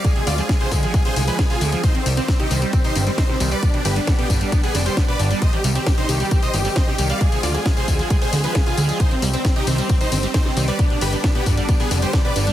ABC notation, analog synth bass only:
X:1
M:4/4
L:1/8
Q:1/4=134
K:Cm
V:1 name="Analog synth bass" clef=bass
z D,, z D,, z C,, z D,, | z C,, z C,, z G,,, z C,, | z G,,, z G,,, z F,,, z G,,, | z C,, z C,, z G,,, z C,, |
z D,, z D,, z D,, z D,, | z C,, z C,, z G,,, z C,, | z G,,, z G,,, z F,,, z G,,, |]